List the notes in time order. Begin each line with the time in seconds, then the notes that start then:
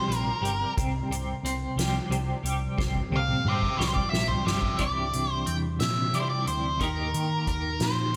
Already playing: G3 C4 C5
0.08 A#1 C3, closed hi-hat
0.17 A#4
0.41 G1 G3, closed hi-hat
0.77 C2 C3, kick, closed hi-hat
1.10 C2 C3, closed hi-hat
1.43 C2 C4, closed hi-hat
1.76 C2 G3, snare, closed hi-hat
2.09 C2 C3, closed hi-hat
2.43 C2 G3, closed hi-hat
2.78 C2 C3, kick, snare
2.95 kick
3.11 C2 C3, high tom
3.17 F5
3.29 mid tom
3.45 G2 C4 C5, mid tom
3.49 E5
3.62 kick
3.78 C2 G3 C5 D5, snare
3.85 C5
3.94 D5, kick
4.09 A#1 E5
4.13 C3, snare
4.28 C5, floor tom
4.45 G1 G3 E5, snare
4.63 kick
4.78 C2 C3 E3 G3 D4 E4 D5, kick, closed hi-hat
5.13 C2, closed hi-hat
5.32 C5
5.46 E2 G5, closed hi-hat
5.80 A#2 E5, snare, closed hi-hat
6.13 C3 E3 G3 D4 E4 D5, closed hi-hat
6.20 C5
6.30 D5
6.46 D2 C5, closed hi-hat
6.79 D#2 D#3 A#3 D#4 G4 A#4, kick, closed hi-hat
7.14 D#3, closed hi-hat
7.47 D#2 A#4, kick, closed hi-hat
7.80 A#2 C5, snare, closed hi-hat
8.13 D#3